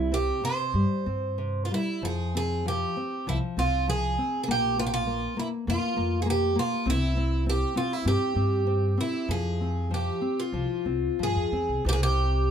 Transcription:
Already playing: C2 C3 E4
0.12 C4 G4
0.44 C3 C5
0.74 G2 G3
1.06 G2 C4
1.38 C3
1.65 F4
1.71 G3 E4
2.02 F2 F3 G#4
2.35 C4 G#4
2.66 F3 G4
2.97 C4
3.27 C2 F3 E4
3.57 C2 C4 F4
3.88 F3 G#4
4.18 C4
4.43 G#4
4.48 A#1 A#3 G4
4.78 A#3 F4
4.87 G4
4.94 F4
5.07 A#3
5.37 A#3 E4
5.67 F2 A#3 F4
5.96 F2 A#3
6.22 A#3 G#4
6.30 G4
6.55 A#3 F4
6.86 C2 C4
6.90 E4
7.17 C4
7.46 C4 G4
7.76 C4 F4
7.93 E4
8.05 G2 C4 G4
8.35 G2 C4
8.67 C4
8.98 C4 E4
9.28 F2 F3 G#4
9.61 C4
9.91 F3 G4
10.21 C4
10.40 F4
10.52 C2 F3
10.85 C2 C4
11.19 G2 F3
11.23 G#4
11.36 F2
11.52 E2 C4
11.68 C2
11.85 C2 C3
11.89 G4
11.93 G#4
12.03 G4

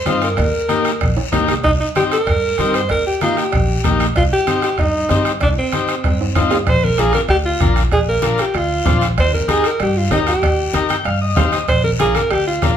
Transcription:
Already playing: C5
0.05 G2 C4 D#4 F4, bombo rim, cowbell, high conga, low timbale, short guiro
0.22 A#4, bombo rim, short guiro
0.37 D#2, bombo low, bombo rim, cowbell, high conga, low conga, long guiro
0.69 A#3 D#4 G4, bombo rim, cowbell, high conga, short guiro
0.85 bombo rim, short guiro
1.01 A#1, bombo low, bombo rim, cowbell, high conga, low conga, long guiro
1.17 D#2, high timbale
1.32 D2 A#3 D#4 G4, bombo rim, cowbell, high conga, low conga, high timbale, short guiro
1.48 C2, bombo rim, low timbale, short guiro
1.64 C2 D#4, bombo low, bombo rim, cowbell, high conga, long guiro
1.80 D#4
1.95 C4 D#4 G4, bombo rim, cowbell, high conga, short guiro
2.12 A#4, bombo rim, short guiro
2.27 G2, bombo low, bombo rim, cowbell, high conga, low conga, long guiro
2.58 G2 C4 D#4 G4, bombo rim, cowbell, high conga, short guiro
2.74 C5, bombo rim, short guiro
2.89 D#2 A#4, bombo low, bombo rim, cowbell, high conga, long guiro
3.07 G4
3.21 A#3 D#4 F4 G4, bombo rim, cowbell, high conga, short guiro
3.37 G4, bombo rim, short guiro
3.52 A#1, bombo low, bombo rim, cowbell, high conga, low conga, long guiro
3.84 A#1 A#3 D#4 G4, bombo low, bombo rim, cowbell, high conga, low conga, short guiro
4.00 bombo rim, short guiro
4.16 C2 F4, bombo low, bombo rim, cowbell, long guiro
4.33 G4
4.47 C4 D#4 G4, bombo rim, cowbell, high conga, short guiro
4.62 G4, bombo rim, short guiro
4.78 G2 D#4, bombo low, bombo rim, cowbell, high conga, low conga, long guiro
5.09 G2 C4 D#4 G4, bombo rim, cowbell, high conga, low timbale, short guiro
5.25 bombo rim, short guiro
5.41 C2 D4, bombo low, bombo rim, cowbell, high conga, long guiro
5.58 C4
5.72 C4 D#4 G4, bombo rim, cowbell, high conga, short guiro
5.88 bombo rim, short guiro
6.04 G2, bombo low, bombo rim, cowbell, high conga, low conga, long guiro
6.21 high timbale
6.35 G2 C4 D#4 F4, bombo low, bombo rim, cowbell, high conga, high timbale, short guiro
6.50 bombo rim, low timbale, short guiro
6.66 A#1 C5, bombo low, bombo rim, cowbell, high conga, long guiro
6.83 A#4, high conga
6.97 A#1 D4 F4 G#4 A#4, bombo rim, high conga, short guiro
7.13 A#4, bombo rim, high conga, short guiro
7.28 D2 G4, bombo rim, cowbell, high conga, long guiro
7.45 F4
7.60 A#1 D4 F4 A#4, bombo low, bombo rim, high conga, short guiro
7.76 bombo rim, short guiro
7.91 A#1 G#4, bombo low, bombo rim, cowbell, long guiro
8.09 A#4
8.22 A#1 D4 F4 A#4, bombo rim, high conga, short guiro
8.38 G4, bombo rim, short guiro
8.54 D2 F4, bombo rim, cowbell, high conga, long guiro
8.85 A#1 D4 F4 C5, bombo low, bombo rim, high conga, low conga, short guiro
9.01 bombo rim, short guiro
9.18 D#2 C5, bombo low, bombo rim, cowbell, high conga, long guiro
9.33 A#4, high conga
9.48 D#2 D#4 G4 G#4 A#4, bombo rim, high conga, short guiro
9.64 A#4, bombo rim, short guiro
9.80 G2 G4, bombo rim, cowbell, high conga, long guiro
9.97 F4
10.11 D#2 D#4 G4 A#4, bombo low, bombo rim, high conga, low timbale, short guiro
10.27 G4, bombo rim, short guiro
10.42 D#2, bombo low, bombo rim, cowbell, high conga, long guiro
10.73 D#2 D#4 G4 A#4, bombo rim, high conga, short guiro
10.89 G5, bombo rim, high conga, short guiro
11.05 G2 F5, bombo rim, cowbell, high conga, long guiro
11.21 D#5
11.36 D#2 D#4 G4 C5 F5, bombo low, bombo rim, high conga, low conga, low timbale, short guiro
11.52 D#5, bombo rim, short guiro
11.68 A#1 C5, bombo low, bombo rim, cowbell, high conga, long guiro
11.84 A#4, high conga
11.99 A#1 D4 F4 G#4 A#4, bombo rim, high conga, short guiro
12.15 A#4, bombo rim, high conga, short guiro
12.31 D2 G4, bombo rim, cowbell, high conga, long guiro
12.47 F4
12.62 A#1 D4 F4 A#4, bombo low, bombo rim, high conga, low timbale, short guiro

